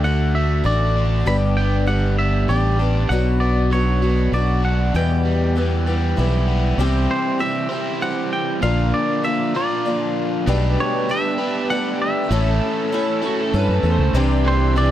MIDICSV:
0, 0, Header, 1, 7, 480
1, 0, Start_track
1, 0, Tempo, 613497
1, 991, Time_signature, 3, 2, 24, 8
1, 11667, End_track
2, 0, Start_track
2, 0, Title_t, "Accordion"
2, 0, Program_c, 0, 21
2, 8198, Note_on_c, 0, 81, 68
2, 8199, Note_on_c, 0, 67, 75
2, 8199, Note_on_c, 0, 71, 67
2, 9622, Note_off_c, 0, 67, 0
2, 9622, Note_off_c, 0, 71, 0
2, 9622, Note_off_c, 0, 81, 0
2, 9645, Note_on_c, 0, 81, 69
2, 9646, Note_on_c, 0, 69, 72
2, 9646, Note_on_c, 0, 88, 86
2, 9647, Note_on_c, 0, 76, 68
2, 11064, Note_off_c, 0, 69, 0
2, 11064, Note_off_c, 0, 76, 0
2, 11064, Note_off_c, 0, 81, 0
2, 11064, Note_off_c, 0, 88, 0
2, 11080, Note_on_c, 0, 74, 73
2, 11080, Note_on_c, 0, 84, 68
2, 11081, Note_on_c, 0, 67, 77
2, 11081, Note_on_c, 0, 88, 87
2, 11667, Note_off_c, 0, 67, 0
2, 11667, Note_off_c, 0, 74, 0
2, 11667, Note_off_c, 0, 84, 0
2, 11667, Note_off_c, 0, 88, 0
2, 11667, End_track
3, 0, Start_track
3, 0, Title_t, "Clean electric guitar"
3, 0, Program_c, 1, 27
3, 33, Note_on_c, 1, 78, 86
3, 273, Note_on_c, 1, 76, 73
3, 279, Note_off_c, 1, 78, 0
3, 513, Note_off_c, 1, 76, 0
3, 517, Note_on_c, 1, 74, 79
3, 997, Note_on_c, 1, 83, 93
3, 1008, Note_off_c, 1, 74, 0
3, 1061, Note_off_c, 1, 83, 0
3, 1227, Note_on_c, 1, 79, 83
3, 1464, Note_off_c, 1, 79, 0
3, 1467, Note_on_c, 1, 78, 85
3, 1707, Note_off_c, 1, 78, 0
3, 1710, Note_on_c, 1, 76, 78
3, 1948, Note_on_c, 1, 74, 77
3, 1957, Note_off_c, 1, 76, 0
3, 2398, Note_off_c, 1, 74, 0
3, 2419, Note_on_c, 1, 78, 84
3, 2647, Note_off_c, 1, 78, 0
3, 2661, Note_on_c, 1, 74, 71
3, 2912, Note_off_c, 1, 74, 0
3, 2916, Note_on_c, 1, 73, 78
3, 3362, Note_off_c, 1, 73, 0
3, 3396, Note_on_c, 1, 74, 75
3, 3616, Note_off_c, 1, 74, 0
3, 3636, Note_on_c, 1, 78, 72
3, 3878, Note_off_c, 1, 78, 0
3, 3881, Note_on_c, 1, 79, 74
3, 4805, Note_off_c, 1, 79, 0
3, 5561, Note_on_c, 1, 72, 72
3, 5793, Note_on_c, 1, 76, 85
3, 5804, Note_off_c, 1, 72, 0
3, 6274, Note_off_c, 1, 76, 0
3, 6277, Note_on_c, 1, 78, 93
3, 6513, Note_off_c, 1, 78, 0
3, 6516, Note_on_c, 1, 79, 84
3, 6738, Note_off_c, 1, 79, 0
3, 6749, Note_on_c, 1, 77, 84
3, 6993, Note_on_c, 1, 74, 77
3, 6999, Note_off_c, 1, 77, 0
3, 7217, Note_off_c, 1, 74, 0
3, 7233, Note_on_c, 1, 76, 87
3, 7481, Note_off_c, 1, 76, 0
3, 7482, Note_on_c, 1, 74, 72
3, 7927, Note_off_c, 1, 74, 0
3, 8453, Note_on_c, 1, 73, 81
3, 8691, Note_off_c, 1, 73, 0
3, 8693, Note_on_c, 1, 76, 94
3, 9153, Note_off_c, 1, 76, 0
3, 9156, Note_on_c, 1, 78, 102
3, 9398, Note_off_c, 1, 78, 0
3, 9401, Note_on_c, 1, 76, 82
3, 10565, Note_off_c, 1, 76, 0
3, 11326, Note_on_c, 1, 72, 82
3, 11558, Note_off_c, 1, 72, 0
3, 11561, Note_on_c, 1, 74, 97
3, 11667, Note_off_c, 1, 74, 0
3, 11667, End_track
4, 0, Start_track
4, 0, Title_t, "Electric slide guitar"
4, 0, Program_c, 2, 29
4, 10127, Note_on_c, 2, 64, 76
4, 10353, Note_off_c, 2, 64, 0
4, 10377, Note_on_c, 2, 66, 86
4, 10482, Note_off_c, 2, 66, 0
4, 10492, Note_on_c, 2, 69, 80
4, 10599, Note_off_c, 2, 69, 0
4, 10630, Note_on_c, 2, 71, 80
4, 10844, Note_off_c, 2, 71, 0
4, 10880, Note_on_c, 2, 72, 77
4, 11089, Note_off_c, 2, 72, 0
4, 11667, End_track
5, 0, Start_track
5, 0, Title_t, "Overdriven electric guitar"
5, 0, Program_c, 3, 29
5, 0, Note_on_c, 3, 57, 63
5, 269, Note_off_c, 3, 57, 0
5, 278, Note_on_c, 3, 57, 58
5, 752, Note_on_c, 3, 62, 62
5, 994, Note_off_c, 3, 57, 0
5, 1236, Note_on_c, 3, 59, 68
5, 1709, Note_off_c, 3, 59, 0
5, 1712, Note_on_c, 3, 59, 59
5, 2183, Note_off_c, 3, 62, 0
5, 2663, Note_off_c, 3, 59, 0
5, 2666, Note_on_c, 3, 59, 66
5, 3136, Note_off_c, 3, 59, 0
5, 3623, Note_on_c, 3, 62, 65
5, 3867, Note_off_c, 3, 62, 0
5, 4107, Note_on_c, 3, 55, 64
5, 4576, Note_off_c, 3, 55, 0
5, 4829, Note_on_c, 3, 64, 67
5, 5066, Note_on_c, 3, 59, 62
5, 5309, Note_off_c, 3, 59, 0
5, 5311, Note_off_c, 3, 64, 0
5, 5319, Note_on_c, 3, 64, 90
5, 5324, Note_on_c, 3, 72, 85
5, 6007, Note_off_c, 3, 72, 0
5, 6014, Note_off_c, 3, 64, 0
5, 6017, Note_on_c, 3, 72, 78
5, 6023, Note_on_c, 3, 64, 80
5, 6035, Note_on_c, 3, 52, 63
5, 6038, Note_on_c, 3, 48, 61
5, 6731, Note_off_c, 3, 72, 0
5, 6734, Note_off_c, 3, 64, 0
5, 6740, Note_off_c, 3, 48, 0
5, 6740, Note_off_c, 3, 52, 0
5, 6750, Note_on_c, 3, 53, 85
5, 6765, Note_on_c, 3, 70, 85
5, 7455, Note_off_c, 3, 70, 0
5, 7458, Note_off_c, 3, 53, 0
5, 7465, Note_on_c, 3, 70, 78
5, 7481, Note_on_c, 3, 53, 74
5, 7486, Note_on_c, 3, 46, 62
5, 8175, Note_off_c, 3, 70, 0
5, 8183, Note_off_c, 3, 53, 0
5, 8186, Note_off_c, 3, 46, 0
5, 8188, Note_on_c, 3, 59, 92
5, 8205, Note_on_c, 3, 71, 93
5, 8893, Note_off_c, 3, 71, 0
5, 8897, Note_off_c, 3, 59, 0
5, 8903, Note_on_c, 3, 71, 86
5, 8912, Note_on_c, 3, 67, 85
5, 8920, Note_on_c, 3, 62, 72
5, 8922, Note_on_c, 3, 59, 70
5, 9614, Note_off_c, 3, 71, 0
5, 9619, Note_off_c, 3, 67, 0
5, 9623, Note_off_c, 3, 62, 0
5, 9624, Note_off_c, 3, 59, 0
5, 9636, Note_on_c, 3, 64, 93
5, 10340, Note_off_c, 3, 64, 0
5, 10348, Note_on_c, 3, 64, 76
5, 10359, Note_on_c, 3, 45, 72
5, 11055, Note_off_c, 3, 64, 0
5, 11061, Note_off_c, 3, 45, 0
5, 11305, Note_on_c, 3, 52, 74
5, 11539, Note_off_c, 3, 52, 0
5, 11667, End_track
6, 0, Start_track
6, 0, Title_t, "Twelve-string acoustic guitar"
6, 0, Program_c, 4, 25
6, 31, Note_on_c, 4, 50, 53
6, 40, Note_on_c, 4, 57, 49
6, 42, Note_on_c, 4, 62, 52
6, 50, Note_on_c, 4, 66, 57
6, 491, Note_off_c, 4, 50, 0
6, 496, Note_off_c, 4, 57, 0
6, 500, Note_on_c, 4, 50, 57
6, 505, Note_off_c, 4, 62, 0
6, 506, Note_off_c, 4, 66, 0
6, 506, Note_on_c, 4, 57, 52
6, 509, Note_on_c, 4, 62, 51
6, 515, Note_on_c, 4, 66, 53
6, 980, Note_off_c, 4, 50, 0
6, 986, Note_on_c, 4, 43, 65
6, 988, Note_off_c, 4, 57, 0
6, 990, Note_on_c, 4, 50, 70
6, 990, Note_on_c, 4, 55, 70
6, 993, Note_off_c, 4, 62, 0
6, 993, Note_off_c, 4, 66, 0
6, 993, Note_on_c, 4, 59, 71
6, 996, Note_on_c, 4, 62, 69
6, 1001, Note_on_c, 4, 67, 79
6, 1450, Note_off_c, 4, 55, 0
6, 1460, Note_on_c, 4, 55, 55
6, 1464, Note_off_c, 4, 59, 0
6, 1467, Note_on_c, 4, 59, 53
6, 1468, Note_off_c, 4, 43, 0
6, 1469, Note_off_c, 4, 62, 0
6, 1469, Note_off_c, 4, 67, 0
6, 1470, Note_off_c, 4, 50, 0
6, 1472, Note_on_c, 4, 62, 54
6, 1478, Note_on_c, 4, 67, 64
6, 1933, Note_off_c, 4, 55, 0
6, 1943, Note_on_c, 4, 55, 48
6, 1948, Note_off_c, 4, 62, 0
6, 1949, Note_off_c, 4, 59, 0
6, 1952, Note_off_c, 4, 67, 0
6, 1952, Note_on_c, 4, 59, 53
6, 1957, Note_on_c, 4, 62, 55
6, 1961, Note_on_c, 4, 67, 61
6, 2176, Note_off_c, 4, 67, 0
6, 2181, Note_off_c, 4, 62, 0
6, 2185, Note_on_c, 4, 67, 47
6, 2187, Note_off_c, 4, 55, 0
6, 2189, Note_off_c, 4, 59, 0
6, 2191, Note_on_c, 4, 62, 39
6, 2198, Note_on_c, 4, 59, 38
6, 2202, Note_on_c, 4, 55, 38
6, 2428, Note_off_c, 4, 67, 0
6, 2429, Note_off_c, 4, 59, 0
6, 2431, Note_off_c, 4, 62, 0
6, 2431, Note_on_c, 4, 47, 63
6, 2434, Note_off_c, 4, 55, 0
6, 2437, Note_on_c, 4, 54, 69
6, 2439, Note_on_c, 4, 59, 74
6, 2439, Note_on_c, 4, 62, 65
6, 2445, Note_on_c, 4, 66, 83
6, 2901, Note_off_c, 4, 54, 0
6, 2910, Note_on_c, 4, 54, 56
6, 2911, Note_off_c, 4, 47, 0
6, 2914, Note_off_c, 4, 59, 0
6, 2915, Note_off_c, 4, 62, 0
6, 2917, Note_on_c, 4, 59, 60
6, 2918, Note_off_c, 4, 66, 0
6, 2925, Note_on_c, 4, 62, 59
6, 2929, Note_on_c, 4, 66, 55
6, 3136, Note_off_c, 4, 66, 0
6, 3146, Note_on_c, 4, 66, 44
6, 3149, Note_off_c, 4, 62, 0
6, 3150, Note_off_c, 4, 54, 0
6, 3154, Note_off_c, 4, 59, 0
6, 3159, Note_on_c, 4, 62, 39
6, 3164, Note_on_c, 4, 59, 35
6, 3388, Note_off_c, 4, 66, 0
6, 3389, Note_off_c, 4, 59, 0
6, 3390, Note_on_c, 4, 54, 53
6, 3395, Note_off_c, 4, 62, 0
6, 3398, Note_on_c, 4, 59, 53
6, 3403, Note_on_c, 4, 62, 56
6, 3410, Note_on_c, 4, 66, 61
6, 3867, Note_off_c, 4, 59, 0
6, 3869, Note_on_c, 4, 40, 70
6, 3870, Note_off_c, 4, 54, 0
6, 3874, Note_off_c, 4, 62, 0
6, 3876, Note_on_c, 4, 47, 67
6, 3876, Note_on_c, 4, 52, 71
6, 3877, Note_on_c, 4, 55, 74
6, 3877, Note_on_c, 4, 59, 71
6, 3880, Note_off_c, 4, 66, 0
6, 3883, Note_on_c, 4, 67, 74
6, 4338, Note_off_c, 4, 52, 0
6, 4346, Note_off_c, 4, 55, 0
6, 4348, Note_on_c, 4, 52, 52
6, 4350, Note_off_c, 4, 40, 0
6, 4353, Note_off_c, 4, 47, 0
6, 4354, Note_off_c, 4, 59, 0
6, 4355, Note_on_c, 4, 55, 58
6, 4357, Note_off_c, 4, 67, 0
6, 4362, Note_on_c, 4, 59, 59
6, 4367, Note_on_c, 4, 67, 62
6, 4583, Note_off_c, 4, 67, 0
6, 4587, Note_off_c, 4, 59, 0
6, 4590, Note_off_c, 4, 52, 0
6, 4592, Note_on_c, 4, 67, 45
6, 4593, Note_off_c, 4, 55, 0
6, 4597, Note_on_c, 4, 59, 47
6, 4606, Note_on_c, 4, 55, 41
6, 4610, Note_on_c, 4, 52, 38
6, 4816, Note_off_c, 4, 52, 0
6, 4825, Note_off_c, 4, 55, 0
6, 4825, Note_on_c, 4, 52, 58
6, 4832, Note_off_c, 4, 67, 0
6, 4834, Note_off_c, 4, 59, 0
6, 4834, Note_on_c, 4, 55, 61
6, 4842, Note_on_c, 4, 59, 68
6, 4844, Note_on_c, 4, 67, 62
6, 5305, Note_off_c, 4, 52, 0
6, 5311, Note_on_c, 4, 48, 70
6, 5313, Note_off_c, 4, 55, 0
6, 5314, Note_off_c, 4, 67, 0
6, 5315, Note_on_c, 4, 52, 70
6, 5317, Note_off_c, 4, 59, 0
6, 5322, Note_on_c, 4, 55, 82
6, 5323, Note_on_c, 4, 67, 88
6, 5325, Note_on_c, 4, 60, 84
6, 5775, Note_off_c, 4, 52, 0
6, 5782, Note_off_c, 4, 55, 0
6, 5784, Note_on_c, 4, 52, 52
6, 5786, Note_off_c, 4, 60, 0
6, 5790, Note_off_c, 4, 67, 0
6, 5791, Note_on_c, 4, 55, 55
6, 5792, Note_off_c, 4, 48, 0
6, 5796, Note_on_c, 4, 60, 54
6, 5800, Note_on_c, 4, 67, 63
6, 6024, Note_off_c, 4, 67, 0
6, 6028, Note_off_c, 4, 52, 0
6, 6032, Note_off_c, 4, 55, 0
6, 6033, Note_on_c, 4, 67, 43
6, 6034, Note_off_c, 4, 60, 0
6, 6046, Note_on_c, 4, 60, 38
6, 6052, Note_on_c, 4, 55, 36
6, 6270, Note_off_c, 4, 55, 0
6, 6270, Note_on_c, 4, 52, 53
6, 6272, Note_off_c, 4, 60, 0
6, 6273, Note_off_c, 4, 67, 0
6, 6279, Note_on_c, 4, 55, 51
6, 6282, Note_on_c, 4, 60, 61
6, 6288, Note_on_c, 4, 67, 60
6, 6744, Note_on_c, 4, 46, 71
6, 6746, Note_off_c, 4, 55, 0
6, 6747, Note_off_c, 4, 52, 0
6, 6749, Note_on_c, 4, 58, 72
6, 6750, Note_off_c, 4, 60, 0
6, 6750, Note_on_c, 4, 50, 80
6, 6753, Note_off_c, 4, 67, 0
6, 6753, Note_on_c, 4, 62, 70
6, 6756, Note_on_c, 4, 65, 80
6, 7216, Note_off_c, 4, 50, 0
6, 7222, Note_off_c, 4, 58, 0
6, 7225, Note_on_c, 4, 50, 56
6, 7229, Note_off_c, 4, 46, 0
6, 7231, Note_off_c, 4, 65, 0
6, 7232, Note_on_c, 4, 58, 59
6, 7233, Note_off_c, 4, 62, 0
6, 7237, Note_on_c, 4, 62, 65
6, 7241, Note_on_c, 4, 65, 62
6, 7461, Note_off_c, 4, 65, 0
6, 7469, Note_off_c, 4, 62, 0
6, 7470, Note_off_c, 4, 50, 0
6, 7470, Note_on_c, 4, 65, 46
6, 7473, Note_off_c, 4, 58, 0
6, 7478, Note_on_c, 4, 62, 36
6, 7484, Note_on_c, 4, 58, 40
6, 7705, Note_off_c, 4, 58, 0
6, 7709, Note_on_c, 4, 50, 56
6, 7710, Note_off_c, 4, 62, 0
6, 7712, Note_off_c, 4, 65, 0
6, 7714, Note_on_c, 4, 58, 53
6, 7719, Note_on_c, 4, 62, 58
6, 7728, Note_on_c, 4, 65, 63
6, 8192, Note_off_c, 4, 50, 0
6, 8192, Note_off_c, 4, 62, 0
6, 8193, Note_on_c, 4, 47, 79
6, 8194, Note_off_c, 4, 58, 0
6, 8196, Note_on_c, 4, 55, 86
6, 8201, Note_off_c, 4, 65, 0
6, 8201, Note_on_c, 4, 57, 80
6, 8202, Note_on_c, 4, 62, 88
6, 8205, Note_on_c, 4, 67, 82
6, 8668, Note_off_c, 4, 55, 0
6, 8674, Note_off_c, 4, 47, 0
6, 8677, Note_on_c, 4, 55, 62
6, 8678, Note_off_c, 4, 62, 0
6, 8679, Note_off_c, 4, 57, 0
6, 8680, Note_off_c, 4, 67, 0
6, 8682, Note_on_c, 4, 57, 60
6, 8690, Note_on_c, 4, 62, 66
6, 8693, Note_on_c, 4, 67, 61
6, 9147, Note_off_c, 4, 55, 0
6, 9153, Note_off_c, 4, 57, 0
6, 9156, Note_off_c, 4, 62, 0
6, 9157, Note_on_c, 4, 55, 59
6, 9160, Note_off_c, 4, 67, 0
6, 9162, Note_on_c, 4, 57, 61
6, 9166, Note_on_c, 4, 62, 62
6, 9169, Note_on_c, 4, 67, 69
6, 9627, Note_off_c, 4, 57, 0
6, 9630, Note_on_c, 4, 45, 75
6, 9631, Note_off_c, 4, 55, 0
6, 9634, Note_on_c, 4, 52, 74
6, 9636, Note_off_c, 4, 62, 0
6, 9637, Note_on_c, 4, 57, 81
6, 9639, Note_on_c, 4, 61, 82
6, 9640, Note_off_c, 4, 67, 0
6, 9643, Note_on_c, 4, 69, 84
6, 10102, Note_off_c, 4, 52, 0
6, 10105, Note_off_c, 4, 57, 0
6, 10111, Note_on_c, 4, 52, 69
6, 10112, Note_off_c, 4, 45, 0
6, 10114, Note_off_c, 4, 61, 0
6, 10114, Note_on_c, 4, 57, 68
6, 10118, Note_off_c, 4, 69, 0
6, 10123, Note_on_c, 4, 61, 76
6, 10126, Note_on_c, 4, 69, 71
6, 10339, Note_off_c, 4, 69, 0
6, 10346, Note_off_c, 4, 61, 0
6, 10349, Note_on_c, 4, 69, 59
6, 10352, Note_off_c, 4, 52, 0
6, 10354, Note_off_c, 4, 57, 0
6, 10356, Note_on_c, 4, 61, 43
6, 10368, Note_on_c, 4, 57, 45
6, 10585, Note_off_c, 4, 57, 0
6, 10589, Note_off_c, 4, 61, 0
6, 10589, Note_on_c, 4, 52, 60
6, 10591, Note_off_c, 4, 69, 0
6, 10595, Note_on_c, 4, 57, 63
6, 10598, Note_on_c, 4, 61, 71
6, 10608, Note_on_c, 4, 69, 75
6, 10814, Note_off_c, 4, 69, 0
6, 10824, Note_off_c, 4, 61, 0
6, 10824, Note_on_c, 4, 69, 51
6, 10831, Note_off_c, 4, 52, 0
6, 10833, Note_on_c, 4, 61, 47
6, 10834, Note_off_c, 4, 57, 0
6, 10842, Note_on_c, 4, 57, 42
6, 11067, Note_on_c, 4, 48, 93
6, 11068, Note_off_c, 4, 69, 0
6, 11069, Note_off_c, 4, 57, 0
6, 11069, Note_on_c, 4, 52, 91
6, 11073, Note_off_c, 4, 61, 0
6, 11073, Note_on_c, 4, 55, 91
6, 11077, Note_on_c, 4, 62, 87
6, 11081, Note_on_c, 4, 67, 85
6, 11536, Note_off_c, 4, 52, 0
6, 11545, Note_on_c, 4, 52, 60
6, 11549, Note_off_c, 4, 48, 0
6, 11549, Note_off_c, 4, 55, 0
6, 11552, Note_on_c, 4, 55, 68
6, 11555, Note_off_c, 4, 62, 0
6, 11557, Note_off_c, 4, 67, 0
6, 11559, Note_on_c, 4, 62, 64
6, 11561, Note_on_c, 4, 67, 65
6, 11667, Note_off_c, 4, 52, 0
6, 11667, Note_off_c, 4, 55, 0
6, 11667, Note_off_c, 4, 62, 0
6, 11667, Note_off_c, 4, 67, 0
6, 11667, End_track
7, 0, Start_track
7, 0, Title_t, "Fingered electric bass"
7, 0, Program_c, 5, 33
7, 0, Note_on_c, 5, 38, 85
7, 478, Note_off_c, 5, 38, 0
7, 506, Note_on_c, 5, 33, 75
7, 957, Note_off_c, 5, 33, 0
7, 983, Note_on_c, 5, 31, 88
7, 1915, Note_off_c, 5, 31, 0
7, 1947, Note_on_c, 5, 33, 81
7, 2398, Note_off_c, 5, 33, 0
7, 2425, Note_on_c, 5, 35, 85
7, 3356, Note_off_c, 5, 35, 0
7, 3382, Note_on_c, 5, 35, 74
7, 3835, Note_off_c, 5, 35, 0
7, 3867, Note_on_c, 5, 40, 87
7, 4798, Note_off_c, 5, 40, 0
7, 4835, Note_on_c, 5, 35, 79
7, 5282, Note_off_c, 5, 35, 0
7, 5303, Note_on_c, 5, 36, 83
7, 5526, Note_off_c, 5, 36, 0
7, 6750, Note_on_c, 5, 34, 85
7, 6971, Note_off_c, 5, 34, 0
7, 8193, Note_on_c, 5, 35, 94
7, 8413, Note_off_c, 5, 35, 0
7, 9626, Note_on_c, 5, 33, 94
7, 9849, Note_off_c, 5, 33, 0
7, 10592, Note_on_c, 5, 43, 83
7, 10700, Note_off_c, 5, 43, 0
7, 10707, Note_on_c, 5, 42, 79
7, 10818, Note_off_c, 5, 42, 0
7, 10822, Note_on_c, 5, 40, 92
7, 10935, Note_off_c, 5, 40, 0
7, 10941, Note_on_c, 5, 37, 74
7, 11054, Note_off_c, 5, 37, 0
7, 11058, Note_on_c, 5, 36, 94
7, 11667, Note_off_c, 5, 36, 0
7, 11667, End_track
0, 0, End_of_file